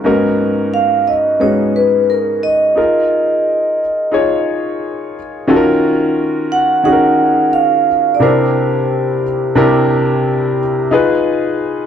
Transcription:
0.04 G#2 A#3 C#4 D#4 F#4 A#4
0.11 B3
0.74 F5
1.08 D#5
1.40 G#2 B3 C#4 D#4 F#4 G#4 C#5
1.76 B4
2.10 A#4
2.43 D#5
2.75 D#4 F4 G#4 A#4
4.12 D#4 F4 G#4 C#5
5.47 D#3 C#4 F4 F#4 A4
5.56 A#4
6.52 F#5
6.83 D#3 C#4 D#4 F#4 G#4 F#5
6.92 A#4
7.53 F5
8.15 D5
8.20 C3 D4 E4 G4 A#4 C5
9.55 C3 D4 E4 G4 A#4
10.91 D#4 F4 G#4 B4

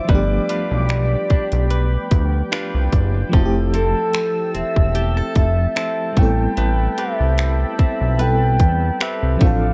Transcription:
Already playing: E4 F4 E5 D6
0.04 F3 A3, closed hi-hat
0.09 G1 G3 B3 D4 G4 B4 D5 G5 B5, kick
0.14 G4
0.49 D4 F4 B4, closed hi-hat
0.71 B1
0.89 finger snap, closed hi-hat
1.30 B1 D4, kick, closed hi-hat
1.52 B1, closed hi-hat
1.70 B4, closed hi-hat
2.11 D2, kick, closed hi-hat
2.52 D4 F4 B4, finger snap, closed hi-hat
2.74 C2
2.92 F#1, kick, closed hi-hat
3.29 F3 A3
3.33 F1 F3 C4 E4 A4 A5 E6, kick, closed hi-hat
3.39 F#4
3.45 G4
3.73 C4 E4 A4, closed hi-hat
4.14 finger snap, closed hi-hat
4.55 E1 C4 E5, closed hi-hat
4.76 E1, kick
4.95 G4, closed hi-hat
5.17 A4
5.35 F1 E5, kick, closed hi-hat
5.76 C4 E4 A4, finger snap, closed hi-hat
6.12 G3 B3, closed hi-hat
6.17 A1 A3 C4 E4 A4 G5 B5, kick
6.22 A4
6.57 A1 A3 B4, closed hi-hat
6.98 C4 G4 B4 E5, closed hi-hat
7.20 C2
7.38 finger snap, closed hi-hat
7.79 B1 C4, kick, closed hi-hat
8.01 B1
8.18 G3 B3 C4 E4 B4 G5, closed hi-hat
8.23 A4
8.60 E2, kick, closed hi-hat
9.00 C4 G4 B4 E5, finger snap, closed hi-hat
9.23 C2
9.37 F3 C4
9.41 A1 A3 C4 D4 F4 D5 F5 D6 E6, kick, closed hi-hat
9.46 A4

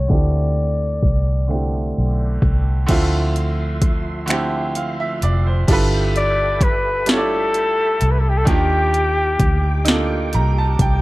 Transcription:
Already playing: D3 A3 C4 E4 F#4 G4 C#5
0.08 D2 D3 A3 C4 D5, kick, closed hi-hat
0.12 E4 G4
0.57 closed hi-hat
1.02 C2, kick, closed hi-hat
1.48 D3 A3 C4, finger snap, closed hi-hat
1.52 E4 G4
1.96 B1, closed hi-hat
2.42 C2, kick, closed hi-hat
2.86 D2 D3 F3 A3 C4 E5 C6, kick, closed hi-hat, crash
2.91 E4 F4
3.36 closed hi-hat
3.82 kick, closed hi-hat
4.26 D3 A3 C4, closed hi-hat
4.30 E4 G4, finger snap
4.75 F5, closed hi-hat
5.00 E5
5.22 F1 D5, closed hi-hat
5.47 C5
5.67 G1 G3 D4 E4 F4 A4 E5 G5 B5, kick, closed hi-hat, crash
5.73 B4
6.16 D5, closed hi-hat
6.61 B4, kick, closed hi-hat
7.06 G3 D4 E4 F4 A4, snare, closed hi-hat
7.10 A4 C#5
7.17 D5
7.54 closed hi-hat
8.01 C2, closed hi-hat
8.11 B4
8.20 A4
8.29 G4
8.38 A4
8.45 D#2 D#3 A#3 D4 G4 D6, kick, closed hi-hat
8.49 F4 G4
8.94 closed hi-hat
9.40 D2, kick, closed hi-hat
9.85 A#3 D4 D#4, snare, closed hi-hat
9.89 F4 A4
10.33 C2 A#5, closed hi-hat
10.58 A5
10.79 C2 G5, kick, closed hi-hat

